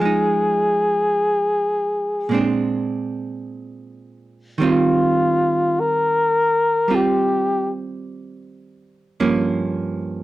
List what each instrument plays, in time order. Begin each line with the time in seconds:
Already playing: hollow-body jazz guitar F3, flugelhorn G#4
0.01 hollow-body jazz guitar G#3 D#4
2.29 hollow-body jazz guitar A#2 G#3 C4
2.34 hollow-body jazz guitar D4
4.58 hollow-body jazz guitar D#3 G3 C4
4.63 hollow-body jazz guitar F4, flugelhorn F4
5.80 flugelhorn A#4
6.88 hollow-body jazz guitar G3 C4 F4
6.95 flugelhorn G4
9.20 hollow-body jazz guitar G2 F3 A#3 C#4